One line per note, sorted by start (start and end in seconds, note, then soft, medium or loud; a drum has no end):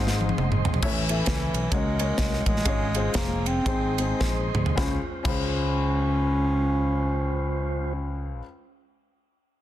0.00 0.31 G#1 loud
0.00 0.61 G#2 medium
0.00 0.68 G#3 medium
0.00 0.68 C4 medium
0.00 0.69 D#4 medium
0.00 0.69 G#4 medium
0.00 0.81 G#4 medium
0.00 0.69 C5 medium
0.00 0.82 C5 medium
0.00 0.82 D#5 medium
0.00 0.82 C6 medium
0.07 snare medium
0.21 high tom medium
0.29 high tom medium
0.38 0.61 F#1 medium
0.38 mid tom medium
0.52 mid tom medium
0.65 0.80 A#1 medium
0.65 floor tom loud
0.74 floor tom loud
0.82 1.21 A1 loud
0.82 1.50 A2 medium
0.82 1.74 E3 medium
0.82 0.98 A3 medium
0.82 0.98 C#4 medium
0.82 0.98 E4 medium
0.82 1.71 A4 medium
0.82 0.98 A4 medium
0.82 2.64 C#5 medium
0.82 0.98 C#5 medium
0.82 1.71 E5 medium
0.82 kick loud
0.82 crash loud
1.09 1.59 A3 medium
1.09 1.59 C#4 medium
1.09 1.59 E4 medium
1.09 1.59 A4 medium
1.09 1.60 E5 medium
1.09 ride bell medium
1.26 1.50 C#2 loud
1.26 kick medium
1.26 snare loud
1.26 ride bell medium
1.54 1.69 B1 loud
1.54 ride bell medium
1.71 2.11 C#2 loud
1.71 2.43 C#3 medium
1.71 2.47 G#3 loud
1.71 1.94 A#3 medium
1.71 1.94 C#4 medium
1.71 1.94 F#4 medium
1.71 2.64 A#4 medium
1.71 1.95 A#4 medium
1.71 1.95 C#5 medium
1.71 2.64 F#5 medium
1.71 kick loud
1.71 ride bell medium
1.99 2.39 A#3 medium
1.99 2.39 C#4 medium
1.99 2.39 F#4 medium
1.99 2.39 A#4 medium
1.99 2.39 C#5 medium
1.99 ride bell medium
2.18 2.43 C2 medium
2.18 kick medium
2.18 snare loud
2.18 ride bell medium
2.33 snare soft
2.46 2.62 A1 medium
2.46 3.17 G#3 loud
2.46 kick loud
2.46 ride bell medium
2.56 snare soft
2.65 3.07 G#1 loud
2.65 3.42 G#2 medium
2.65 2.82 G#3 medium
2.65 3.65 C#4 medium
2.65 2.83 C#4 medium
2.65 2.83 F4 medium
2.65 2.83 G#4 medium
2.65 4.76 G#4 medium
2.65 2.83 C#5 medium
2.65 3.65 F5 medium
2.65 kick loud
2.65 ride bell medium
2.95 3.52 G#3 medium
2.95 3.52 C#4 medium
2.95 3.52 F4 medium
2.95 3.52 G#4 medium
2.95 3.52 C5 medium
2.95 ride bell medium
3.14 3.59 F1 medium
3.14 3.48 A#3 loud
3.14 kick medium
3.14 snare loud
3.14 ride bell medium
3.46 4.21 C4 loud
3.46 ride bell medium
3.66 4.12 G#1 loud
3.66 4.51 G#2 medium
3.66 3.92 G#3 medium
3.66 3.92 C4 medium
3.66 3.92 D#4 medium
3.66 3.92 G#4 medium
3.66 4.76 C5 medium
3.66 3.93 C5 medium
3.66 4.76 D#5 medium
3.66 4.76 C6 medium
3.66 kick loud
3.66 ride bell medium
3.98 4.45 G#3 medium
3.98 4.45 C4 medium
3.98 4.45 D#4 medium
3.98 4.45 G#4 medium
3.98 4.45 C5 medium
3.98 ride bell medium
4.21 4.50 A#1 medium
4.21 kick loud
4.21 snare medium
4.54 4.74 D2 medium
4.54 mid tom loud
4.66 floor tom medium
4.75 4.97 C#2 medium
4.75 4.98 C#2 medium
4.75 7.93 G#3 medium
4.75 4.96 C#4 medium
4.75 4.97 C#4 medium
4.75 7.93 C#4 medium
4.75 4.97 F4 medium
4.75 7.93 F4 medium
4.75 4.98 G#4 medium
4.75 7.93 C5 medium
4.75 kick loud
4.75 snare medium
4.79 4.99 C5 medium
5.23 8.40 C#2 medium
5.23 8.38 C#4 medium
5.23 8.40 C#4 loud
5.23 8.40 F4 medium
5.23 8.41 G#4 medium
5.23 kick loud
5.23 crash medium
5.27 8.43 C5 medium